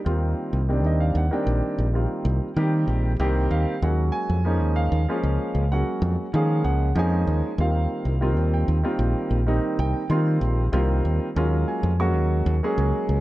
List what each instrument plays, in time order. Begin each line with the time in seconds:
0.05 fingered electric bass D#2, grand piano D#3 G3 A#3 C4 F4
0.53 fingered electric bass C2
0.69 grand piano D#3 G3 A#3 C4 D4
0.84 fingered electric bass D#2, grand piano D#5
1.00 grand piano F5
1.15 fingered electric bass D#2, grand piano F#5
1.31 grand piano D#3 G3 A#3 C4 D4 G5
1.47 fingered electric bass A#1
1.78 fingered electric bass A#1
1.93 grand piano D#3 G3 A#3 C4 F4
2.25 fingered electric bass C2
2.56 fingered electric bass D#3, grand piano D#3 G3 A#3 C4 G4
2.88 fingered electric bass A#1
3.19 fingered electric bass C2, grand piano D#3 G3 A#3 C4 G4
3.51 fingered electric bass D#2, grand piano F5
3.82 fingered electric bass D#2, grand piano F#3 G#3 A#3 C#4 F#4 F#5
4.12 grand piano G#5
4.29 fingered electric bass F2
4.44 grand piano F3 G#3 A#3 C#4 D#4
4.61 fingered electric bass D#2
4.76 grand piano F5
4.92 fingered electric bass D#2
5.08 grand piano F3 G#3 A#3 C#4 F4
5.23 fingered electric bass C#2
5.55 fingered electric bass C#2
5.72 grand piano F#3 G#3 A#3 C#4 F#4 F#5
6.02 fingered electric bass F2
6.33 fingered electric bass D#3, grand piano F3 G#3 A#3 C#4 G#4 F5
6.64 fingered electric bass C#2, grand piano F#5
6.95 fingered electric bass F2, grand piano F3 G#3 A#3 C#4 D#4 G#5
7.27 fingered electric bass D#2
7.58 fingered electric bass D#2, grand piano D#3 G3 A#3 C4 F4 F5
8.05 fingered electric bass C2
8.21 grand piano D#3 G3 A#3 C4 F4
8.37 fingered electric bass D#2
8.54 grand piano G5
8.68 fingered electric bass D#2
8.83 grand piano D#3 G3 A#3 C4 F4
8.99 fingered electric bass A#1
9.30 fingered electric bass A#1
9.46 grand piano D#3 G3 A#3 C4 D#4
9.79 fingered electric bass C2, grand piano G5
10.10 fingered electric bass D#3, grand piano D#3 G3 A#3 C4 F4 C6
10.41 fingered electric bass A#1
10.72 fingered electric bass C2, grand piano D#3 G3 A#3 C4 F4
11.05 fingered electric bass D#2
11.36 fingered electric bass D#2, grand piano F#3 G#3 A#3 C#4 F4
11.68 grand piano G#5
11.83 fingered electric bass F2
12.00 grand piano F#3 G#3 A#3 C#4 F#4 C#6
12.15 fingered electric bass D#2
12.46 fingered electric bass D#2
12.63 grand piano F#3 G#3 A#3 C#4 G#4
12.78 fingered electric bass C#2
13.09 fingered electric bass C#2